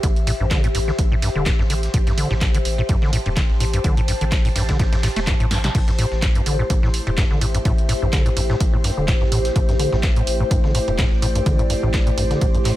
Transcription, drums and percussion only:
0.03 kick loud
0.03 closed hi-hat medium
0.03 ride medium
0.16 closed hi-hat soft
0.27 open hi-hat loud
0.27 ride medium
0.51 kick loud
0.51 snare loud
0.51 clap loud
0.51 closed hi-hat medium
0.51 ride medium
0.64 closed hi-hat soft
0.75 open hi-hat loud
0.75 ride medium
0.88 snare soft
0.98 kick loud
0.98 closed hi-hat medium
0.98 ride medium
1.22 snare soft
1.22 open hi-hat loud
1.22 ride medium
1.46 kick loud
1.46 snare loud
1.46 clap loud
1.46 closed hi-hat medium
1.46 ride medium
1.59 snare soft
1.70 open hi-hat loud
1.70 ride medium
1.83 snare soft
1.83 closed hi-hat soft
1.94 kick loud
1.94 closed hi-hat medium
1.94 ride medium
2.07 snare soft
2.07 closed hi-hat soft
2.18 open hi-hat medium
2.18 ride medium
2.31 snare medium
2.41 kick loud
2.41 snare loud
2.41 clap loud
2.41 closed hi-hat medium
2.41 ride medium
2.54 closed hi-hat soft
2.65 open hi-hat loud
2.65 ride medium
2.89 kick loud
2.89 closed hi-hat medium
2.89 ride medium
3.02 snare medium
3.13 open hi-hat loud
3.13 ride medium
3.26 ride soft
3.37 kick loud
3.37 snare loud
3.37 clap loud
3.37 closed hi-hat medium
3.37 ride medium
3.50 snare soft
3.60 open hi-hat loud
3.60 ride medium
3.73 closed hi-hat medium
3.73 ride soft
3.84 kick loud
3.84 closed hi-hat medium
3.84 ride medium
3.97 closed hi-hat soft
4.08 open hi-hat loud
4.08 ride medium
4.21 closed hi-hat soft
4.32 kick loud
4.32 snare loud
4.32 clap loud
4.32 closed hi-hat medium
4.32 ride medium
4.45 open hi-hat medium
4.56 snare loud
4.56 open hi-hat loud
4.56 ride medium
4.69 kick medium
4.69 snare loud
4.69 closed hi-hat soft
4.69 ride medium
4.79 kick loud
4.79 snare loud
4.79 closed hi-hat medium
4.79 ride medium
4.93 snare loud
4.93 closed hi-hat soft
4.93 ride medium
5.03 snare loud
5.03 clap soft
5.03 open hi-hat loud
5.03 ride medium
5.16 snare loud
5.16 closed hi-hat soft
5.16 ride medium
5.27 kick loud
5.27 snare loud
5.27 clap loud
5.27 closed hi-hat medium
5.27 ride medium
5.40 closed hi-hat soft
5.51 snare medium
5.51 open hi-hat loud
5.51 ride medium
5.64 snare medium
5.64 snare soft
5.64 closed hi-hat medium
5.75 kick loud
5.75 closed hi-hat medium
5.75 crash medium
5.75 ride medium
5.88 snare soft
5.88 closed hi-hat soft
5.99 open hi-hat loud
5.99 ride medium
6.12 snare medium
6.22 kick loud
6.22 snare loud
6.22 clap loud
6.22 closed hi-hat medium
6.22 ride medium
6.35 closed hi-hat soft
6.46 open hi-hat loud
6.46 ride medium
6.70 kick loud
6.70 closed hi-hat medium
6.70 ride medium
6.83 snare medium
6.94 open hi-hat loud
6.94 ride medium
7.07 ride soft
7.18 kick loud
7.18 snare loud
7.18 clap loud
7.18 closed hi-hat medium
7.18 ride medium
7.31 snare soft
7.41 open hi-hat loud
7.41 ride medium
7.54 closed hi-hat medium
7.54 ride soft
7.65 kick loud
7.65 closed hi-hat medium
7.65 ride medium
7.78 closed hi-hat soft
7.89 open hi-hat loud
7.89 ride medium
8.13 kick loud
8.13 snare loud
8.13 clap loud
8.13 closed hi-hat medium
8.13 ride medium
8.26 closed hi-hat medium
8.37 open hi-hat loud
8.37 ride medium
8.50 snare soft
8.60 kick loud
8.60 closed hi-hat medium
8.60 ride medium
8.84 snare soft
8.84 open hi-hat loud
8.84 ride medium
9.08 kick loud
9.08 snare loud
9.08 clap loud
9.08 closed hi-hat medium
9.08 ride medium
9.21 snare soft
9.32 open hi-hat loud
9.32 ride medium
9.45 snare soft
9.45 closed hi-hat soft
9.56 kick loud
9.56 closed hi-hat medium
9.56 ride medium
9.69 snare soft
9.69 closed hi-hat soft
9.79 open hi-hat loud
9.79 ride medium
9.93 snare medium
10.03 kick loud
10.03 snare loud
10.03 clap loud
10.03 closed hi-hat medium
10.03 ride medium
10.16 closed hi-hat soft
10.27 open hi-hat loud
10.27 ride medium
10.51 kick loud
10.51 closed hi-hat medium
10.51 ride medium
10.64 snare medium
10.75 open hi-hat loud
10.75 ride medium
10.88 ride soft
10.98 kick loud
10.98 snare loud
10.98 clap loud
10.98 closed hi-hat medium
10.98 ride medium
11.12 snare soft
11.22 open hi-hat loud
11.22 ride medium
11.35 closed hi-hat soft
11.35 ride soft
11.46 kick loud
11.46 closed hi-hat medium
11.46 ride medium
11.59 closed hi-hat soft
11.70 open hi-hat loud
11.70 ride medium
11.94 kick loud
11.94 snare loud
11.94 clap loud
11.94 closed hi-hat medium
11.94 ride medium
12.07 closed hi-hat soft
12.18 open hi-hat loud
12.18 ride medium
12.31 snare soft
12.31 closed hi-hat soft
12.41 kick loud
12.41 closed hi-hat medium
12.41 ride medium
12.55 closed hi-hat soft
12.65 snare soft
12.65 clap soft
12.65 open hi-hat loud
12.65 ride medium

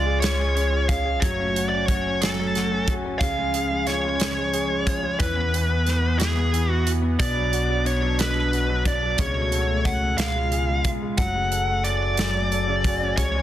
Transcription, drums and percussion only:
0.22 snare loud
0.22 closed hi-hat medium
0.57 closed hi-hat soft
0.89 kick medium
0.89 closed hi-hat medium
1.22 kick loud
1.22 closed hi-hat medium
1.56 closed hi-hat medium
1.88 kick medium
1.88 closed hi-hat soft
2.22 snare loud
2.22 closed hi-hat medium
2.55 snare soft
2.55 closed hi-hat soft
2.88 kick medium
2.88 closed hi-hat medium
3.21 kick loud
3.21 closed hi-hat medium
3.54 closed hi-hat medium
3.87 snare soft
3.87 closed hi-hat soft
4.20 snare loud
4.20 closed hi-hat medium
4.53 closed hi-hat soft
4.87 kick medium
4.87 closed hi-hat medium
5.20 kick loud
5.20 closed hi-hat medium
5.54 closed hi-hat medium
5.87 snare soft
5.87 closed hi-hat medium
6.20 snare loud
6.20 closed hi-hat medium
6.54 closed hi-hat soft
6.87 closed hi-hat medium
7.20 kick loud
7.20 closed hi-hat medium
7.53 closed hi-hat medium
7.86 closed hi-hat medium
8.19 snare loud
8.19 closed hi-hat medium
8.53 closed hi-hat soft
8.85 kick medium
8.85 closed hi-hat medium
9.18 kick loud
9.18 closed hi-hat medium
9.52 closed hi-hat medium
9.85 kick medium
9.85 closed hi-hat soft
10.18 snare loud
10.18 closed hi-hat medium
10.52 closed hi-hat soft
10.85 kick medium
10.85 closed hi-hat medium
11.18 kick loud
11.18 closed hi-hat medium
11.52 closed hi-hat medium
11.85 closed hi-hat soft
12.17 snare loud
12.17 closed hi-hat medium
12.52 closed hi-hat soft
12.84 kick medium
12.84 closed hi-hat medium
13.17 kick loud
13.17 closed hi-hat medium

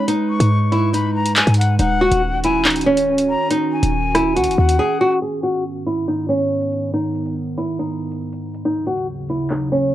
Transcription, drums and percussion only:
0.08 closed hi-hat medium
0.40 closed hi-hat medium
0.72 closed hi-hat medium
0.94 closed hi-hat medium
1.26 closed hi-hat medium
1.36 clap loud
1.36 closed hi-hat loud
1.47 closed hi-hat medium
1.54 closed hi-hat medium
1.61 closed hi-hat medium
1.79 closed hi-hat medium
2.12 closed hi-hat medium
2.44 closed hi-hat medium
2.65 clap loud
2.65 closed hi-hat medium
2.70 closed hi-hat medium
2.76 closed hi-hat medium
2.81 closed hi-hat medium
2.97 closed hi-hat medium
3.18 closed hi-hat medium
3.51 closed hi-hat medium
3.83 closed hi-hat medium
4.15 cross-stick loud
4.15 closed hi-hat medium
4.36 closed hi-hat medium
4.44 closed hi-hat medium
4.51 closed hi-hat soft
4.69 closed hi-hat medium
5.22 closed hi-hat medium
5.43 closed hi-hat medium
5.54 closed hi-hat medium
5.86 closed hi-hat medium
6.08 closed hi-hat medium
6.61 closed hi-hat medium
6.72 closed hi-hat medium
6.93 closed hi-hat medium
7.15 closed hi-hat medium
7.26 closed hi-hat medium
7.58 closed hi-hat medium
7.80 closed hi-hat medium
8.11 closed hi-hat medium
8.32 closed hi-hat medium
8.54 closed hi-hat medium
8.65 closed hi-hat medium
8.86 closed hi-hat medium
8.97 closed hi-hat medium
9.29 closed hi-hat medium
9.51 clap loud
9.51 closed hi-hat medium

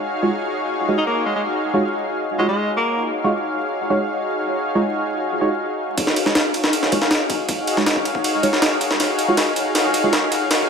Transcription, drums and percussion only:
5.98 kick loud
5.98 ride medium
6.07 snare soft
6.16 ride medium
6.26 snare soft
6.35 snare loud
6.35 ride medium
6.54 ride medium
6.64 snare soft
6.73 ride medium
6.83 snare medium
6.92 kick medium
6.92 ride medium
7.02 snare soft
7.11 snare loud
7.11 ride medium
7.30 kick medium
7.30 ride medium
7.49 kick loud
7.49 ride medium
7.67 ride medium
7.77 snare soft
7.86 snare loud
7.86 ride medium
7.96 kick medium
8.05 ride medium
8.15 kick medium
8.24 ride medium
8.43 ride medium
8.53 snare soft
8.62 snare loud
8.62 ride medium
8.81 ride medium
8.91 snare soft
9.00 snare soft
9.00 ride medium
9.19 ride medium
9.37 snare medium
9.37 ride medium
9.56 ride medium
9.75 snare medium
9.75 ride medium
9.94 ride medium
10.13 snare medium
10.13 ride medium
10.32 ride medium
10.51 snare medium
10.51 ride medium

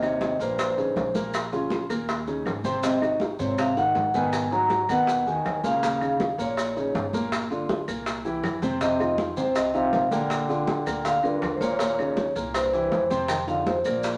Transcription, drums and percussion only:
0.02 high bongo soft
0.02 high conga soft
0.02 claves medium
0.02 maracas soft
0.21 high bongo medium
0.21 high conga medium
0.21 maracas soft
0.40 high conga soft
0.40 maracas medium
0.59 high bongo medium
0.59 high conga soft
0.59 claves medium
0.59 maracas medium
0.77 high bongo soft
0.77 high conga soft
0.77 maracas soft
0.96 high bongo soft
0.96 low bongo medium
0.96 high conga medium
0.96 maracas soft
1.15 high bongo soft
1.15 high conga medium
1.15 maracas medium
1.34 high bongo medium
1.34 high conga soft
1.34 claves medium
1.34 maracas medium
1.52 high bongo soft
1.52 high conga soft
1.52 maracas soft
1.70 high bongo medium
1.70 high conga medium
1.70 maracas soft
1.89 high conga soft
1.89 claves medium
1.89 maracas medium
2.08 high bongo medium
2.08 high conga soft
2.08 maracas medium
2.27 high bongo soft
2.27 high conga soft
2.27 maracas soft
2.46 high bongo soft
2.46 low bongo medium
2.46 high conga soft
2.46 claves medium
2.46 maracas soft
2.64 high bongo soft
2.64 high conga medium
2.64 maracas medium
2.83 high bongo medium
2.83 high conga soft
2.83 maracas medium
3.01 high bongo soft
3.01 high conga soft
3.01 claves medium
3.01 maracas soft
3.20 high bongo medium
3.20 high conga medium
3.20 maracas soft
3.39 high conga soft
3.39 maracas medium
3.58 high bongo medium
3.58 high conga soft
3.58 claves medium
3.58 maracas medium
3.76 high bongo soft
3.76 high conga soft
3.76 maracas soft
3.95 high bongo soft
3.95 low bongo medium
3.95 high conga medium
3.95 maracas soft
4.14 high bongo soft
4.14 high conga medium
4.14 maracas medium
4.33 high bongo medium
4.33 high conga soft
4.33 claves medium
4.33 maracas loud
4.51 high bongo soft
4.51 high conga soft
4.51 maracas soft
4.70 high bongo medium
4.70 high conga medium
4.70 maracas soft
4.89 high conga soft
4.89 claves medium
4.89 maracas medium
5.07 high bongo medium
5.07 high conga soft
5.07 maracas medium
5.26 high bongo soft
5.26 high conga soft
5.26 maracas soft
5.45 high bongo soft
5.45 low bongo medium
5.45 high conga soft
5.45 claves medium
5.45 maracas soft
5.64 high bongo soft
5.64 high conga medium
5.64 maracas medium
5.83 high bongo medium
5.83 high conga soft
5.83 maracas medium
6.01 high bongo soft
6.01 high conga soft
6.01 claves medium
6.01 maracas soft
6.20 high bongo medium
6.20 high conga loud
6.20 maracas soft
6.39 high conga soft
6.39 maracas medium
6.57 high bongo medium
6.57 high conga soft
6.57 claves medium
6.57 maracas medium
6.76 high bongo soft
6.76 high conga soft
6.76 maracas soft
6.95 high bongo soft
6.95 low bongo medium
6.95 high conga medium
6.95 maracas soft
7.13 high bongo soft
7.13 high conga medium
7.13 maracas medium
7.32 high bongo medium
7.32 high conga soft
7.32 claves medium
7.32 maracas medium
7.50 high bongo soft
7.50 high conga soft
7.50 maracas soft
7.69 high bongo medium
7.69 high conga loud
7.69 maracas soft
7.88 high conga soft
7.88 claves medium
7.88 maracas medium
8.06 high bongo medium
8.06 high conga soft
8.06 maracas medium
8.25 high bongo soft
8.25 high conga soft
8.25 maracas soft
8.44 high bongo soft
8.44 low bongo medium
8.44 high conga soft
8.44 claves medium
8.44 maracas soft
8.62 high bongo soft
8.62 high conga medium
8.62 maracas medium
8.81 high bongo medium
8.81 maracas medium
9.00 high bongo soft
9.00 high conga soft
9.00 claves medium
9.00 maracas soft
9.18 high bongo medium
9.18 high conga medium
9.18 maracas soft
9.37 high conga soft
9.37 maracas medium
9.55 high bongo medium
9.55 high conga soft
9.55 claves medium
9.55 maracas medium
9.75 high bongo soft
9.75 high conga soft
9.75 maracas soft
9.93 high bongo soft
9.93 low bongo medium
9.93 high conga medium
9.93 maracas soft
10.11 high bongo soft
10.11 high conga medium
10.11 maracas medium
10.30 high bongo medium
10.30 high conga soft
10.30 claves medium
10.30 maracas medium
10.49 high bongo soft
10.49 high conga soft
10.49 maracas soft
10.67 high bongo medium
10.67 high conga loud
10.67 maracas soft
10.86 high conga soft
10.86 claves medium
10.86 maracas medium
11.05 high bongo medium
11.05 high conga soft
11.05 maracas medium
11.24 high bongo soft
11.24 high conga soft
11.24 maracas soft
11.42 high bongo soft
11.42 low bongo medium
11.42 high conga soft
11.42 claves medium
11.42 maracas soft
11.61 high bongo soft
11.61 high conga medium
11.61 maracas medium
11.79 high bongo medium
11.79 high conga soft
11.79 maracas loud
11.99 high bongo soft
11.99 high conga soft
11.99 claves medium
11.99 maracas soft
12.17 high bongo medium
12.17 high conga medium
12.17 maracas soft
12.35 high conga soft
12.35 maracas medium
12.54 high bongo medium
12.54 high conga soft
12.54 claves medium
12.54 maracas medium
12.73 high bongo soft
12.73 high conga soft
12.73 maracas soft
12.92 high bongo soft
12.92 low bongo medium
12.92 high conga medium
12.92 maracas soft
13.10 high bongo soft
13.10 high conga medium
13.10 maracas medium
13.28 high bongo medium
13.28 high conga soft
13.28 claves medium
13.28 maracas loud
13.48 high bongo soft
13.48 high conga soft
13.48 maracas soft
13.66 high bongo medium
13.66 high conga loud
13.66 maracas soft
13.85 high conga soft
13.85 claves medium
13.85 maracas medium
14.03 high bongo medium
14.03 high conga soft
14.03 maracas medium

